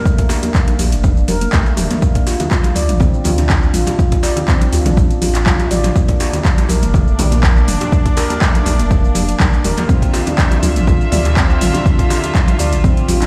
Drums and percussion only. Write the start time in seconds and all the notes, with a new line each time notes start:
0.05 kick, shaker
0.18 kick, closed hi-hat, muted conga, shaker
0.29 open hi-hat, djembe slap, shaker
0.43 closed hi-hat, muted conga, djembe tone, shaker
0.54 kick, clap, shaker
0.68 closed hi-hat, high conga, shaker
0.79 open hi-hat, muted conga, djembe tone, high conga, shaker
0.92 closed hi-hat, shaker
1.03 kick, muted conga, high conga, shaker
1.17 shaker
1.28 open hi-hat, muted conga, djembe tone, high conga, shaker
1.41 closed hi-hat, shaker
1.52 kick, clap, high conga, shaker
1.66 muted conga, shaker
1.77 mid tom, open hi-hat, djembe tone, high conga, shaker
1.90 closed hi-hat, mid tom, muted conga, djembe slap, shaker
2.02 kick, shaker
2.15 kick, closed hi-hat, muted conga, shaker
2.27 open hi-hat, djembe slap, shaker
2.40 closed hi-hat, muted conga, djembe tone, low conga, shaker
2.51 kick, clap, shaker
2.64 closed hi-hat, djembe slap, high conga, shaker
2.74 open hi-hat, muted conga, high conga, djembe tone, shaker
2.89 closed hi-hat, mid tom, shaker
3.00 kick, muted conga, low conga, shaker
3.14 shaker
3.24 mid tom, open hi-hat, muted conga, djembe tone, low conga, shaker
3.38 closed hi-hat, djembe slap, djembe tone, shaker
3.49 kick, clap, shaker
3.62 muted conga, shaker
3.74 mid tom, open hi-hat, high conga, shaker
3.87 closed hi-hat, muted conga, djembe slap, djembe tone, shaker
3.99 kick, shaker
4.12 kick, closed hi-hat, muted conga, shaker
4.23 open hi-hat, djembe slap, shaker
4.36 closed hi-hat, muted conga, djembe tone, low conga, shaker
4.48 kick, clap, shaker
4.61 closed hi-hat, high conga, shaker
4.72 open hi-hat, muted conga, high conga, djembe tone, shaker
4.85 closed hi-hat, mid tom, low conga, shaker
4.97 kick, muted conga, high conga, shaker
5.11 closed hi-hat, shaker
5.22 open hi-hat, muted conga, djembe tone, high conga, shaker
5.35 clap, closed hi-hat, shaker
5.46 kick, clap, high conga, shaker
5.60 closed hi-hat, djembe slap, muted conga, shaker
5.70 mid tom, open hi-hat, djembe tone, high conga, shaker
5.84 closed hi-hat, mid tom, djembe slap, muted conga, shaker
5.96 kick, shaker
6.08 kick, closed hi-hat, muted conga, shaker
6.20 open hi-hat, djembe slap, shaker
6.33 closed hi-hat, muted conga, djembe tone, low conga, shaker
6.45 kick, clap, shaker
6.58 closed hi-hat, djembe slap, high conga, shaker
6.69 open hi-hat, muted conga, djembe tone, high conga, shaker
6.83 closed hi-hat, mid tom, shaker
6.94 kick, muted conga, low conga, shaker
7.08 shaker
7.19 mid tom, open hi-hat, muted conga, djembe tone, low conga, shaker
7.31 closed hi-hat, djembe slap, djembe tone, shaker
7.43 kick, clap, shaker
7.56 muted conga, shaker
7.68 mid tom, open hi-hat, high conga, shaker
7.81 closed hi-hat, muted conga, djembe slap, djembe tone, shaker
7.92 kick, shaker
8.06 kick, closed hi-hat, muted conga, shaker
8.17 open hi-hat, djembe slap, shaker
8.30 closed hi-hat, muted conga, djembe tone, shaker
8.41 kick, clap, shaker
8.55 closed hi-hat, high conga, shaker
8.66 open hi-hat, muted conga, high conga, djembe tone, shaker
8.79 closed hi-hat, shaker
8.91 kick, muted conga, high conga, shaker
9.04 shaker
9.15 open hi-hat, muted conga, djembe tone, high conga, shaker
9.29 closed hi-hat, shaker
9.40 kick, clap, high conga, shaker
9.53 muted conga, shaker
9.64 mid tom, open hi-hat, djembe tone, high conga, shaker
9.77 closed hi-hat, mid tom, muted conga, djembe slap, shaker
9.89 kick, shaker
10.02 kick, closed hi-hat, muted conga, shaker
10.13 open hi-hat, djembe slap, shaker
10.26 closed hi-hat, muted conga, djembe tone, low conga, shaker
10.38 kick, clap, shaker
10.51 closed hi-hat, djembe slap, high conga, shaker
10.62 open hi-hat, muted conga, high conga, djembe tone, shaker
10.76 closed hi-hat, mid tom, shaker
10.87 kick, muted conga, low conga, shaker
11.01 shaker
11.12 mid tom, open hi-hat, muted conga, djembe tone, low conga, shaker
11.25 closed hi-hat, djembe slap, djembe tone, shaker
11.37 kick, clap, shaker
11.50 muted conga, shaker
11.61 mid tom, open hi-hat, high conga, shaker
11.73 closed hi-hat, djembe slap, muted conga, djembe tone, shaker
11.86 kick, shaker
11.99 kick, closed hi-hat, muted conga, shaker
12.10 open hi-hat, djembe slap, shaker
12.23 closed hi-hat, muted conga, djembe tone, shaker
12.35 kick, clap, shaker
12.48 closed hi-hat, high conga, shaker
12.59 open hi-hat, muted conga, djembe tone, high conga, shaker
12.73 closed hi-hat, shaker
12.84 kick, muted conga, high conga, shaker
12.97 closed hi-hat, shaker
13.08 open hi-hat, muted conga, high conga, djembe tone, shaker
13.22 clap, closed hi-hat, shaker